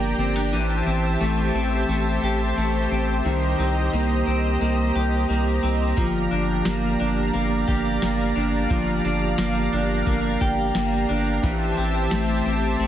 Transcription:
Already playing: G1 F3 A#3 D4 G4 D5 G5 A#5
0.18 G1 C4
0.36 D4
0.51 A1 E3 C5 E5 A5
0.86 A1 C4
1.21 A1 A3
1.54 A1 C4
1.88 A1 A3
2.22 A1 G4
2.57 A1 A3
2.91 A1 C4
3.25 C2 D#3 D#5 A#5
3.59 C2 C4
3.93 C2 A#3
4.27 C2 C4
4.61 C2 A#3
4.95 C2 G4
5.29 C2 A#3
5.63 C2 C4
5.97 G1 F3 D5 F5, kick, closed hi-hat
6.31 G1 D4, closed hi-hat
6.65 G1 A#3, snare, closed hi-hat
7.00 G1 D4, closed hi-hat
7.33 G1 A#3, closed hi-hat
7.68 G1 G4, kick, closed hi-hat
8.02 G1 A#3, snare, closed hi-hat
8.36 G1 D4, closed hi-hat
8.70 G1 F3, kick, closed hi-hat
9.05 G1 D4, closed hi-hat
9.38 G1 A#3, snare, closed hi-hat
9.73 G1 D4, closed hi-hat
10.06 G1 A#3, kick, closed hi-hat
10.41 G1 G4, kick, closed hi-hat
10.75 G1 A#3, snare, closed hi-hat
11.09 G1 D4, closed hi-hat
11.42 A1 E3 G4 C5 E5 A5, kick, closed hi-hat
11.77 A1 C4, closed hi-hat
12.11 A1 A3, snare, closed hi-hat
12.46 A1 C4, closed hi-hat
12.79 A1 A3, closed hi-hat

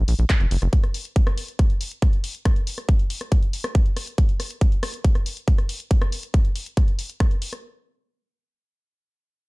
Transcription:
0.08 A#1, open hi-hat
0.19 A#1, closed hi-hat
0.30 kick, cross-stick, clap, closed hi-hat
0.40 F#1, closed hi-hat
0.51 F#1, open hi-hat
0.62 F#1, cross-stick, closed hi-hat
0.73 kick, closed hi-hat
0.84 cross-stick, closed hi-hat
0.94 open hi-hat
1.05 closed hi-hat
1.16 kick, closed hi-hat
1.27 cross-stick, closed hi-hat
1.38 open hi-hat
1.48 closed hi-hat
1.59 kick, cross-stick, closed hi-hat
1.70 closed hi-hat
1.81 open hi-hat
1.91 closed hi-hat
2.02 kick, cross-stick, closed hi-hat
2.13 closed hi-hat
2.24 open hi-hat
2.35 closed hi-hat
2.45 kick, cross-stick, closed hi-hat
2.56 closed hi-hat
2.67 open hi-hat
2.78 cross-stick, closed hi-hat
2.89 kick, closed hi-hat
2.99 closed hi-hat
3.10 open hi-hat
3.21 cross-stick, closed hi-hat
3.32 kick, closed hi-hat
3.43 closed hi-hat
3.53 open hi-hat
3.64 cross-stick, closed hi-hat
3.75 kick, closed hi-hat
3.86 closed hi-hat
3.97 cross-stick, open hi-hat
4.07 closed hi-hat
4.18 kick, closed hi-hat
4.29 closed hi-hat
4.40 cross-stick, open hi-hat
4.50 closed hi-hat
4.61 kick, closed hi-hat
4.72 closed hi-hat
4.83 cross-stick, open hi-hat
4.94 closed hi-hat
5.04 kick, closed hi-hat
5.15 cross-stick, closed hi-hat
5.26 open hi-hat
5.37 closed hi-hat
5.48 kick, closed hi-hat
5.58 cross-stick, closed hi-hat
5.69 open hi-hat
5.80 closed hi-hat
5.91 kick, closed hi-hat
6.02 cross-stick, closed hi-hat
6.12 open hi-hat
6.23 closed hi-hat
6.34 kick, cross-stick, closed hi-hat
6.45 closed hi-hat
6.56 open hi-hat
6.66 closed hi-hat
6.77 kick, cross-stick, closed hi-hat
6.88 closed hi-hat
6.99 open hi-hat
7.10 closed hi-hat
7.20 kick, cross-stick, closed hi-hat
7.31 closed hi-hat
7.42 open hi-hat
7.53 cross-stick

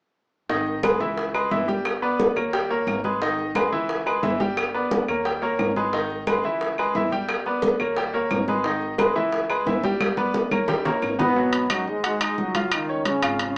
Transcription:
0.49 G#1 D#3 D#4 D#5, high bongo, high conga
0.67 high bongo, high conga
0.83 G#3 G#4 B4, high bongo, high conga, claves
1.00 C#2 E3 E4 E5, high conga
1.17 high bongo, high conga
1.34 G#3 G#4 B4, high bongo, high conga, claves
1.51 G1 E3 E4 E5, high bongo, low bongo, high conga
1.68 G3 G4 G5, high bongo, high conga
1.85 high bongo, high conga, claves
2.02 B3 B4 D5, high bongo, high conga
2.19 high bongo, high conga
2.36 D#2 A#3 A#4 C#5, high conga, claves
2.53 G3 G4 G5, high bongo, high conga
2.70 A#3 A#4 C#5, high bongo, high conga
2.87 G#1, high bongo, low bongo, high conga, claves
3.04 G#3 G#4 B4, high bongo, high conga
3.21 D#3 D#4 D#5, high bongo, high conga
3.38 high bongo, high conga
3.55 G#3 G#4 B4, high bongo, high conga, claves
3.72 C#2 E3 E4 E5, high conga
3.89 high bongo, high conga
4.06 G#3 G#4 B4, high bongo, high conga, claves
4.23 G1 E3 E4 E5, high bongo, low bongo, high conga
4.40 G3 G4 G5, high bongo, high conga
4.57 high bongo, high conga, claves
4.74 B3 B4 D5, high bongo, high conga
4.91 high bongo, high conga
5.08 D#2 A#3 A#4 C#5, high conga, claves
5.25 G3 G4 G5, high bongo, high conga
5.42 A#3 A#4 C#5, high bongo, high conga
5.59 G#1, high bongo, low bongo, high conga, claves
5.76 G#3 G#4 B4, high bongo, high conga
5.93 D#3 D#4 D#5, high bongo, high conga
6.10 high bongo, high conga
6.27 G#3 G#4 B4, high bongo, high conga, claves
6.44 C#2 E3 E4 E5, high conga
6.61 high bongo, high conga
6.78 G#3 G#4 B4, high bongo, high conga, claves
6.95 G1 E3 E4 E5, high bongo, low bongo, high conga
7.12 G3 G4 G5, high bongo, high conga
7.29 high bongo, high conga, claves
7.46 B3 B4 D5, high bongo, high conga
7.62 high bongo, high conga
7.80 D#2 A#3 A#4 C#5, high conga, claves
7.97 G3 G4 G5, high bongo, high conga
8.13 A#3 A#4 C#5, high bongo, high conga
8.30 G#1, high bongo, low bongo, high conga, claves
8.48 G#3 G#4 B4, high bongo, high conga
8.64 D#3 D#4 D#5, high bongo, high conga
8.81 high bongo, high conga
8.98 G#3 G#4 B4, high bongo, high conga, claves
9.16 C#2 E3 E4 E5, high conga
9.32 high bongo, high conga
9.50 G#3 G#4 B4, high bongo, high conga, claves
9.66 G1 E3 E4 E5, high bongo, low bongo, high conga
9.83 G3 G4 G5, high bongo, high conga
10.00 high bongo, high conga, claves
10.17 B3 B4 D5, high bongo, high conga
10.34 high bongo, high conga
10.51 D#2 A#3 A#4 C#5, high conga, claves
10.68 G3 G4 G5, high bongo, low conga
10.85 A#3 A#4 C#5, high bongo, low conga
11.02 G#1, low bongo, claves
11.19 B2 B3 B4 D#5, low bongo, low conga
11.36 F#3 F#4, high conga
11.53 high conga, high timbale
11.70 F#2 F#3 D#4 D#5, high conga, high timbale, claves
11.87 D#2 G#2 G#3, high conga
12.03 G#2 G#3 F#4 F#5, high conga, high timbale
12.21 D#4 D#5, high conga, high timbale, claves
12.38 C#2 F#2 F#3, high conga
12.55 F4 F5, high conga, high timbale
12.72 D#3 D#4, high conga, high timbale, claves
12.89 C#4 C#5, high conga
13.05 C#3 C#4, high conga, high timbale
13.23 G#1 F4 F5, high timbale, claves
13.39 C#3 C#4, high conga, high timbale

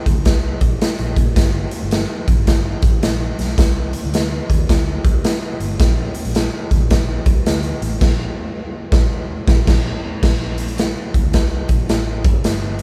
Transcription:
0.06 D2, kick, closed hi-hat
0.25 C2, kick, snare, closed hi-hat
0.61 A#1, kick, closed hi-hat
0.81 muted fingered electric bass stroke, snare, closed hi-hat
0.98 A#1, closed hi-hat
1.16 A#2, kick, closed hi-hat
1.36 G1, kick, snare, closed hi-hat
1.71 closed hi-hat
1.82 G1
1.91 snare, closed hi-hat
2.28 A#1, kick, closed hi-hat
2.38 G1
2.47 kick, snare, closed hi-hat
2.82 A1, kick, closed hi-hat
3.03 A#1, snare, closed hi-hat
3.39 B1, snare, closed hi-hat
3.58 C2, kick, snare, closed hi-hat
3.93 closed hi-hat
4.04 D2
4.14 snare, closed hi-hat
4.50 D#2, kick, closed hi-hat
4.69 D2, kick, snare, closed hi-hat
5.04 C2, kick, closed hi-hat
5.24 C3, snare, closed hi-hat
5.60 G1, closed hi-hat
5.80 A#1, kick, snare, closed hi-hat
6.14 closed hi-hat
6.25 A#1, closed hi-hat
6.35 snare, closed hi-hat
6.71 D2, kick, closed hi-hat
6.80 A#1
6.90 kick, snare, closed hi-hat
7.26 C2, kick, closed hi-hat
7.46 D2, snare, closed hi-hat
7.63 closed hi-hat
7.81 A1, closed hi-hat
8.01 A#1, kick, snare, crash
8.92 A#1, kick, snare
9.48 A#1, kick, snare
9.67 A#1, kick, snare, crash
10.23 A#1, kick, snare, crash
10.58 closed hi-hat
10.68 closed hi-hat
10.78 snare, closed hi-hat
11.14 C2, kick, closed hi-hat
11.24 D2
11.33 C2, kick, snare, closed hi-hat
11.69 A#1, kick, closed hi-hat
11.89 A1, snare, closed hi-hat
12.25 G1, kick, closed hi-hat
12.44 G1, snare, closed hi-hat
12.79 closed hi-hat

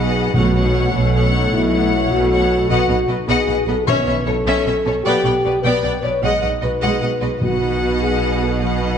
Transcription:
Already playing: B1 B2 F#3 B3 D#4 F#4 G#4 B4 D#5 F#5
0.16 B4
0.33 B1 B2 A3 F#4 C#5 F#5
0.54 A3 C#4 C#5 F#5
0.76 F#4
0.92 B1 B2 C#4 A4
1.14 A3 C#5 F#5
1.33 D#4 A4
1.51 B1 B2 E4
1.73 A3 C#4 C#5 F#5
1.93 F#4
2.10 B1 B2 F#4 A4
2.31 A3 C#5 F#5
2.51 A4
2.69 B1 B2 B3 F#4 D#5 F#5
2.88 B1 B2 B3 D#4 D#5 F#5
3.08 B1 B2 B3 F#4 B4 D#5
3.27 B1 B2 B3 G#4 B4 D#5 F#5
3.47 B1 B2 B3 D#5 F#5
3.66 B1 B2 B3 A4 B4 D#5
3.86 B1 B2 C#4 B4 C#5 E5
4.05 B1 B2 C#4 C#5 E5
4.26 B1 B2 C#4 E4 A4 C#5
4.45 B1 B2 C#4 A4 C#5 E5
4.65 B1 B2 C#4 C#5 E5
4.85 B1 B2 C#4 A4 C#5
5.03 B1 B2 B3 G4 D5 G5
5.23 B1 B2 B3 D4 D5 G5
5.44 B1 B2 B3 G4 B4 D5
5.62 B1 B2 B3 B4 D5 G5
5.82 B1 B2 B3 D5 G5
6.02 B1 B2 B3 B4 C#5 D5
6.22 B1 B2 G#3 D#5 F#5
6.41 B1 B2 G#3 D#4 D#5 F#5
6.61 B1 B2 G#3 F#4 B4 D#5
6.81 B1 B2 G#3 G#4 D#5 F#5
7.01 B1 B2 G#3 D#5 F#5
7.21 B1 B2 G#3 G#4 B4 D#5
7.40 B1 B2 B3 D#5 F#5
7.44 F#4
7.62 D#4
7.82 F#4
8.02 G#4 B4
8.22 D#5
8.42 A4 B4
8.61 F#3 B3 B4 D#5 F#5
8.81 D#4

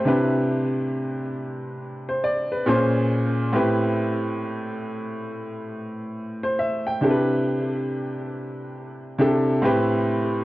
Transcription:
Already playing: C5
0.05 C3 D4 E4 G4 B4
2.09 C5
2.24 D5
2.52 B4
2.66 A#2 C#4 F4 G#4 C5
3.53 A2 C4 E4 G4 B4
6.43 C5
6.59 E5
6.87 G5
7.01 C3 D4 E4 G4 A4
7.10 B4
9.18 C3 D4 E4 G4 A4
9.62 A2 C4 E4 G4 B4

